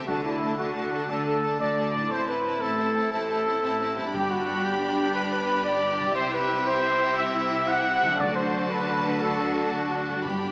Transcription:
Already playing: D3 A3
0.00 D4 D5
0.07 D2 D3 A3 D4 F#4 A5
0.25 A3 D4 E4 A5
0.41 A3 D4 A5
0.58 D2 D3 A3 D4 F#4 A5
0.75 A3 D4 A5
0.92 A3 D4 A5
1.08 D2 D3 A3 D4 A4 A5
1.26 A3 D4 A4 A5
1.43 A3 D4 A5
1.59 D2 D3 A3 D4 D5 A5
1.76 A3 D4 A5
1.93 A2 A3 D4 A5
1.98 A3
2.02 E4
2.06 A1 C4 C5
2.11 A2 E4 C5 A5
2.26 C4 E4 B4 A5
2.44 C4 E4 A5
2.61 A1 A2 C4 E4 A4 A5
2.77 C4 E4 A5
2.95 C4 E4 A5
3.12 A1 A2 C4 E4 A4 A5
3.29 C4 E4 A5
3.45 C4 E4 A5
3.62 A1 A2 C4 E4 A5
3.80 C4 E4 A5
3.96 G2 C4 E4 A5
4.01 B3
4.05 G4
4.10 G1 D4 D5
4.14 G2 G4 B5
4.31 F#4
4.65 G4
5.14 B4
5.31 B4
5.65 D5
5.98 C3
6.03 G3
6.07 G4
6.11 E5
6.16 C2 C3 E4 C5 E5
6.33 B4
6.67 C5
7.17 E5
7.34 E5
7.68 F#5
8.01 D3
8.06 F#3
8.10 D4
8.15 D2 D5
8.19 D3 D4 F#4 D5 A5
8.36 C5
8.70 B4
9.21 A4
9.73 F#4
9.90 F#4
10.08 G2
10.13 G3
10.17 D4
10.22 G1 G2 G4 B4 B5

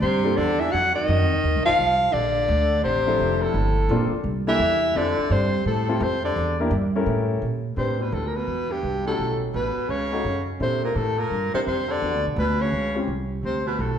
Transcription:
0.01 G2 C3 C5
0.24 G3 A#3 D4 F4 A4
0.37 E2 D3 D5
0.60 E3 E5
0.72 F2 F#3 F#5
0.94 D#3 D#5
1.08 F#2
1.20 F2
1.32 D#2
1.44 D#2
1.56 C2
1.65 A1 F3 F5
1.79 C2
2.12 A#1 D3 D5
2.48 D2
2.83 A1 C3 C5
3.07 F3 C4 D4 E4 A4
3.19 F1
3.41 A2 A4
3.54 G1
3.89 A#1 A#3 C4 D4 F4 A4
4.12 muted upright bass stroke
4.24 C2
4.47 E3 A#3 D4 E4 G4 A4 E5
4.59 E2
4.95 F2 D3 C4 E4 F4 G4 A4 D5
5.18 muted upright bass stroke
5.30 G2 C3 C5
5.65 A2 A4
5.89 C4 E4 F4 G4 A4
6.00 F2 C3 C5
6.24 D3 D5
6.36 E2
6.60 A#3 D4 E4 G4 A#4
6.71 G2
6.96 C#4 E4 G4 A4 A#4
7.06 A2
7.42 A#2
7.77 A2 C3 C4 D4 G4 B4 C5
7.99 B2 B4
8.12 D2 A2 A4
8.25 A#2 A#4
8.35 B2 B4
8.47 E2
8.70 G2 G4
8.83 C2
9.06 A2 C#4 D#4 F#4 G4 A4
9.19 B1
9.53 A1 B2 B4
9.77 muted upright bass stroke
9.89 C#2 C#3 C#5
10.12 C#4 D#4 F#4 A4
10.24 F#2
10.60 A#2 C3 C4 D4 E4 A4 C5
10.83 A#2 A#4
10.95 A2 A4
11.18 A#2 A#4
11.30 G2
11.54 C3 C4 D4 E4 C5, muted upright bass stroke
11.66 F2 C3 C5
11.89 D3 D5
12.01 E2 B3 D4 F#4 G4
12.14 D2
12.25 B1
12.36 D2 B2 B4
12.60 C#3 C#5
12.72 C#2
12.95 C4 C#4 F4 G4
13.08 C2
13.43 D2 C3 C5
13.66 B2 B4
13.79 B1 A2 A4

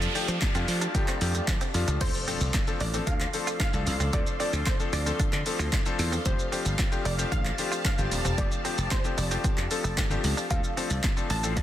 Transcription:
Already playing: F3 A3 D4 F4 G4 A4 D5 F5 A5, noise sweep
0.02 closed hi-hat, shaker
0.15 F3 A3 D4 G4, muted clean electric guitar stroke, open hi-hat, shaker
0.28 F3 C4, closed hi-hat, shaker
0.41 kick, snare, clap, closed hi-hat, shaker
0.55 F2 F3 A3 C4 D4 F4, closed hi-hat, shaker
0.68 F3, muted clean electric guitar stroke, open hi-hat, shaker
0.81 D4, closed hi-hat, shaker
0.94 F3 A3 D4 G4, kick, closed hi-hat, shaker
1.08 C4, clap, closed hi-hat, shaker
1.21 F2 F3 A3 D4 G4, muted clean electric guitar stroke, open hi-hat, shaker
1.35 A3, closed hi-hat, shaker
1.48 F3, kick, snare, clap, closed hi-hat, shaker
1.61 C4, closed hi-hat, shaker
1.74 F2 F3 A3 D4 F4, muted clean electric guitar stroke, open hi-hat, shaker
1.88 C#2 D4, closed hi-hat, shaker
2.01 D2 A3 C4 D4 A4 C5 D5 F5 C6, kick, closed hi-hat, crash, impact, shaker
2.14 shaker
2.27 F3 A3 C4 D4 A4, open hi-hat, shaker
2.41 C2, muted clean electric guitar stroke, shaker
2.54 muted clean electric guitar stroke, kick, snare, clap, closed hi-hat, shaker
2.67 F3 A3 C4 D4 A4, shaker
2.80 A1 A3 D5, open hi-hat, shaker
2.94 F3 A3 C4 D4 A4, shaker
3.07 D2 D4 F5, kick, closed hi-hat, shaker
3.20 muted clean electric guitar stroke, clap, shaker
3.33 F3 A3 C4 D4 A4, open hi-hat, shaker
3.47 F4, shaker
3.60 D4 F5, kick, snare, clap, closed hi-hat, shaker
3.73 C2 F3 A3 C4 D4 A4, shaker
3.87 C2, muted clean electric guitar stroke, open hi-hat, shaker
4.00 C#2 C4, shaker
4.13 D2 F3 A3 C4 D4 A4 D5, kick, closed hi-hat, shaker
4.27 shaker
4.40 F3 A3 C4 D4 A4 D5, open hi-hat, shaker
4.53 D2, muted clean electric guitar stroke, shaker
4.66 C5, muted clean electric guitar stroke, kick, snare, clap, closed hi-hat, shaker
4.80 F3 A3 C4 D4 A4, shaker
4.93 D2 A3 D5, open hi-hat, shaker
5.06 F3 A3 C4 D4 A4, shaker
5.20 D4, kick, closed hi-hat, shaker
5.33 D3, muted clean electric guitar stroke, clap, shaker
5.46 F3 A3 C4 D4 A4, open hi-hat, shaker
5.59 D2 F4, shaker
5.73 D4, kick, snare, clap, closed hi-hat, shaker
5.86 F3 A3 C4 D4 A4, shaker
5.99 E2, muted clean electric guitar stroke, open hi-hat, shaker
6.12 C4, shaker
6.25 F1 F3 A3 C4 D4 G4 C5 D5 A5, kick, closed hi-hat, shaker
6.39 shaker
6.52 F3 A3 C4 D4 G4, open hi-hat, shaker
6.65 G1, muted clean electric guitar stroke, shaker
6.79 muted clean electric guitar stroke, kick, snare, clap, closed hi-hat, shaker
6.92 F3 A3 C4 D4 G4, shaker
7.05 F1 A3 D5, open hi-hat, shaker
7.18 F3 A3 C4 D4 G4, shaker
7.32 A1 D4 F5, kick, closed hi-hat, shaker
7.45 muted clean electric guitar stroke, clap, shaker
7.58 F3 A3 C4 D4 G4, open hi-hat, shaker
7.72 F4, shaker
7.85 D4 F5, kick, snare, clap, closed hi-hat, shaker
7.98 G1 F3 A3 C4 D4 G4, shaker
8.12 D#1, muted clean electric guitar stroke, open hi-hat, shaker
8.25 E1 C4, shaker
8.38 F1 F3 A3 C4 D4 G4 D5, kick, closed hi-hat, shaker
8.52 shaker
8.65 F3 A3 C4 D4 G4, open hi-hat, shaker
8.78 F1, muted clean electric guitar stroke, shaker
8.91 C5, muted clean electric guitar stroke, kick, snare, clap, closed hi-hat, shaker
9.04 F3 A3 C4 D4 G4, shaker
9.18 F1 A3 D5, open hi-hat, shaker
9.31 F3 A3 C4 D4 G4, shaker
9.44 C4, kick, closed hi-hat, shaker
9.57 F2, muted clean electric guitar stroke, clap, shaker
9.71 F3 A3 C4 D4 A4, open hi-hat, shaker
9.84 F1 A3, shaker
9.97 G1 C4, kick, snare, clap, closed hi-hat, shaker
10.10 F3 A3 C4 D4 G4, shaker
10.24 C#2, muted clean electric guitar stroke, open hi-hat, shaker
10.37 D4, shaker
10.50 D2 F3 A3 C4 D4 A4 D5 F5 C6, kick, closed hi-hat, shaker
10.64 shaker
10.77 F3 A3 C4 D4 A4, open hi-hat, shaker
10.90 C2, muted clean electric guitar stroke, shaker
11.03 muted clean electric guitar stroke, kick, snare, clap, closed hi-hat, shaker
11.17 F3 A3 C4 D4 A4, shaker
11.30 A1 A3 A5, open hi-hat, shaker
11.43 F3 A3 C4 D4 A4, shaker
11.57 D2 D4, kick, closed hi-hat, shaker

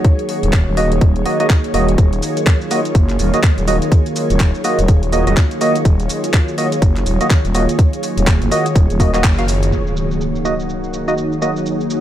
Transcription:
Already playing: D#3 F#3 A#3 F#4 G#4 C#5
0.04 kick, closed hi-hat
0.19 closed hi-hat
0.29 open hi-hat
0.43 D#1, closed hi-hat
0.53 kick, clap, closed hi-hat
0.68 D#1
0.77 A#3 F#4 D#5, open hi-hat
0.92 closed hi-hat
1.01 D#1, kick, closed hi-hat
1.16 closed hi-hat
1.26 A#3 F#4 D#5, open hi-hat
1.40 A#3 F#4 D#5, closed hi-hat
1.50 kick, clap, closed hi-hat
1.64 closed hi-hat
1.74 D#1 A#3 F#4 D#5, open hi-hat
1.88 closed hi-hat
1.98 D#1 F4, kick, closed hi-hat, shaker
2.13 closed hi-hat, shaker
2.22 open hi-hat, shaker
2.37 closed hi-hat, shaker
2.47 kick, clap, closed hi-hat, shaker
2.61 shaker
2.71 A#3 F#4 D#5, open hi-hat, shaker
2.85 closed hi-hat, shaker
2.95 F#1, kick, closed hi-hat, shaker
3.09 clap, closed hi-hat, shaker
3.19 D#1, open hi-hat, shaker
3.34 A#3 F#4 D#5, closed hi-hat, shaker
3.43 kick, clap, closed hi-hat, shaker
3.58 D#1, closed hi-hat, shaker
3.68 A#3 F#4 D#5, open hi-hat, shaker
3.82 closed hi-hat, shaker
3.92 kick, closed hi-hat, shaker
4.06 closed hi-hat, shaker
4.16 open hi-hat, shaker
4.30 D#1, closed hi-hat, shaker
4.40 kick, clap, closed hi-hat, shaker
4.55 shaker
4.64 A#3 F#4 D#5, open hi-hat, shaker
4.79 D#1, closed hi-hat, shaker
4.88 kick, closed hi-hat, shaker
5.03 closed hi-hat, shaker
5.13 A#3 F#4 D#5, open hi-hat, shaker
5.27 D#1 A#3 F#4 D#5, closed hi-hat, shaker
5.37 kick, clap, closed hi-hat, shaker
5.51 closed hi-hat, shaker
5.61 A#3 F#4 D#5, open hi-hat, shaker
5.75 closed hi-hat, shaker
5.85 D#1, kick, closed hi-hat, shaker
6.00 closed hi-hat, shaker
6.09 open hi-hat, shaker
6.24 closed hi-hat, shaker
6.34 kick, clap, closed hi-hat, shaker
6.48 shaker
6.58 A#3 F#4 D#5, open hi-hat, shaker
6.72 closed hi-hat, shaker
6.82 F#1, kick, closed hi-hat, shaker
6.96 clap, closed hi-hat, shaker
7.06 D#1, open hi-hat, shaker
7.21 A#3 F#4 D#5, closed hi-hat, shaker
7.30 kick, clap, closed hi-hat, shaker
7.45 D#1, closed hi-hat, shaker
7.55 A#3 F#4 D#5, open hi-hat, shaker
7.69 closed hi-hat, shaker
7.79 kick, closed hi-hat, shaker
7.93 closed hi-hat, shaker
8.03 open hi-hat, shaker
8.17 D#1, closed hi-hat, shaker
8.27 kick, clap, closed hi-hat, shaker
8.42 F#1, closed hi-hat, shaker
8.51 A#3 F#4 D#5, open hi-hat, shaker
8.66 closed hi-hat, shaker
8.76 D#1, kick, closed hi-hat, shaker
8.90 D#1, closed hi-hat, shaker
9.00 A#3 F#4 D#5, kick, open hi-hat, shaker
9.14 A#3 F#4 D#5, clap, closed hi-hat, shaker
9.24 F#1, kick, clap, closed hi-hat, shaker
9.38 A#3 F#4 F5, closed hi-hat, shaker
9.48 open hi-hat, shaker
9.63 closed hi-hat, shaker
9.72 D#3 F#3 A#3 D#4 F#4, impact, shaker
9.87 shaker
9.97 shaker
10.08 G#4, shaker
10.16 C#5
10.21 shaker
10.35 shaker
10.45 A#3 F#4 D#5, shaker
10.60 shaker
10.69 shaker
10.84 shaker
10.94 shaker
10.99 F#5
11.08 A#3 F#4 D#5, shaker
11.18 shaker
11.32 shaker
11.42 A#3 F#4 D#5, shaker
11.56 shaker
11.66 shaker
11.81 shaker
11.90 shaker

